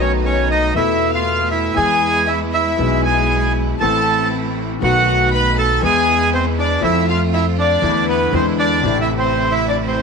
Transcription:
Already playing: B1 B2 D#3 A3 B3 D#4 F#4
0.00 C#4 C#5
0.25 C#4 C#5
0.50 D#4 D#5
0.74 E2 B2 A3 B3 E4 A4 E5
1.11 F4 F5
1.49 E4 E5
1.75 E2 E3 G#3 B3 E4 G#4 G#5
2.27 E4 E5
2.53 E4 E5
2.77 B1 B2 E3 G#3 B3 E4 G#4
3.05 G#4 G#5
3.80 A1 A2 E3 A3 C4 E4 A4 A5
4.80 B1 B2 D#3 A3 B3 D#4 F#5
4.84 F#4 F#5
5.32 B4 B5
5.59 A4 A5
5.82 E2 E3 G#3 B3 E4 G#4 G#5
6.33 C4 C5
6.58 D4 D5
6.81 F2 F3 A3 C4 E4 F4 A4 E5
7.09 F4 F5
7.33 E4 E5
7.58 D4 D5
7.80 E2 D3 E3 A3 B3 D4 E4
8.08 B3 B4
8.31 E2 D3 E3 G#3 B3 C4 D4 E4 C5
8.35 C5
8.58 D4 D5
8.82 A1 A2 C3 E3 A3 C4 E4
9.01 E4 E5
9.18 C4 C5
9.51 E4 E5
9.68 D4 D5
9.85 C4 C5

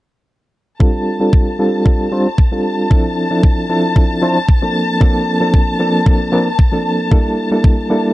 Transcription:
0.80 G3 C4 D4 F4 A4 A5, kick
1.20 G3 C4 D4 F4 A4
1.33 kick
1.59 G3 C4 D4 F4 A4
1.85 G3 C4 D4 F4 A4, kick
2.11 G3 C4 D4 F4 C5
2.38 kick
2.52 G3 C4 D4 F4 A4
2.90 F3 C4 D4 E4 A4, kick
3.30 F3 C4 D4 E4 A4
3.43 kick
3.69 F3 C4 D4 E4 A4
3.95 F3 C4 D4 E4 A4, kick
4.22 F3 C4 D4 E4 C5
4.49 kick
4.62 F3 A#3 C4 D4 A4
5.00 F3 A#3 C4 D4 A4, kick
5.41 F3 A#3 C4 D4 A4
5.54 kick
5.79 F3 A#3 C4 D4 A4
6.06 F3 A#3 C4 D4 A4, kick
6.32 F3 A#3 C4 D4 A#4
6.59 kick
6.72 F3 A#3 C4 D4 A4
7.11 G3 A#3 D4 E4 A4, kick
7.51 G3 A#3 D4 E4 A4
7.64 kick
7.90 G3 A#3 D4 E4 A4

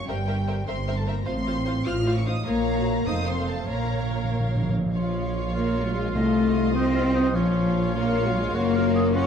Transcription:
0.07 G1 G2 G3 A#4 C5 E5 G5
0.27 A#4 C5 E5
0.47 A#4 C5 E5
0.66 G1 G2 C4 A#4 C5 E5 C6
0.87 A#4 C5 E5
0.96 A3 A5
1.06 A#3 A#4 C5 E5 A#5
1.25 A1 A2 C4 F4 C5 F5 C6
1.46 F4 C5 F5
1.65 F4 C5 F5
1.85 A1 A2 F4 C5 F5 F6
2.06 F4 C5 F5
2.16 C#4 C#6
2.26 D#4 F4 C5 F5 D#6
2.45 A#1 A#2 A#3 F4 C#5 F5 A#5
2.76 F#4
3.06 F1 F2 D#4 A4 C5 F5 D#6
3.27 C4 C6
3.48 A3 A5
3.68 A#1 A#2 A#3 A#4 C#5 F5 A#5
3.76 A#2
3.85 A#2
3.93 A#2
4.01 A#2
4.09 A#2
4.16 A#2
4.24 A#2
4.32 A#2
4.40 A#2
4.47 A#2
4.55 A#2
4.62 A#2
4.70 A#2
4.78 A#2
4.86 A#2
4.92 A#1 F3 F4 C#5 F5
5.53 A#3 F4 C#5
5.84 F#3
5.95 G#3
6.14 C2 C3 A3 F4 D#5
6.74 C4 D#4 F4 D#5
6.95 F4
7.15 D#4
7.34 A#1 F3 C#4 F4 C#5 F5
7.95 A#3 F4 C#5
8.27 F#3
8.36 G#3
8.54 F#1 A#3 F4 F#4 C#5
8.75 A#4
8.95 G#4
9.14 C#4 F4 F#4 C#5

